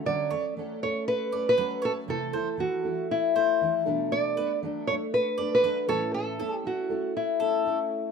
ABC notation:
X:1
M:4/4
L:1/16
Q:"Swing 16ths" 1/4=118
K:D
V:1 name="Mandolin"
z2 c z6 z d2 B z c z | z2 =c z6 z c3 z3 | z2 B z6 z d2 B z c z | z2 A z6 z A3 z3 |]
V:2 name="Nylon-string guitar"
d4 z2 c2 B3 B3 A2 | A4 F4 E6 z2 | d4 z2 c2 B3 B3 A2 | A4 F4 E6 z2 |]
V:3 name="Steel-string acoustic guitar"
[D,F,A,CA]2 [A,CA]2 [F,A,CA]2 [A,CA]4 [A,CA]2 [F,A,CA]4 | [=C,E,A,EA]2 [A,EA]2 [E,A,EA]2 [A,EA]4 [A,EA]2 [E,A,EA]2 [B,,F,A,DA]2- | [B,,F,A,DA]2 [A,DA]2 [F,A,DA]2 [A,DA]4 [A,DA]2 [F,A,DA]2 [A,,E,A,CEA]2- | [A,,E,A,CEA]2 [A,CEA]2 [A,CEA]2 [A,CEA]4 [A,CEA]2 [A,CEA]4 |]